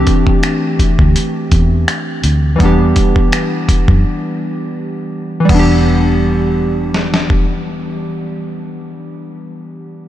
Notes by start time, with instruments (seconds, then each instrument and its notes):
Already playing: synth keys E3 A3 C4 D4 G4
0.07 kick, closed hi-hat
0.27 kick
0.43 finger snap, closed hi-hat
0.79 muted fingered electric bass stroke, kick, closed hi-hat
0.99 fingered electric bass D2, kick
1.16 closed hi-hat
1.52 fingered electric bass E2, kick, closed hi-hat
1.88 finger snap, closed hi-hat
2.24 fingered electric bass D2, closed hi-hat
2.56 synth keys E3 G3
2.60 fingered electric bass E2, synth keys B3 D4, kick, closed hi-hat
2.65 synth keys G4
2.96 kick, closed hi-hat
3.16 kick
3.32 finger snap, closed hi-hat
3.69 muted fingered electric bass stroke, kick, closed hi-hat
3.88 fingered electric bass F#2, kick
5.40 synth keys E3
5.45 synth keys G3
5.49 fingered electric bass E1, synth keys B3, kick, crash
5.55 synth keys D4
5.59 synth keys G4
6.94 snare
7.14 snare
7.30 kick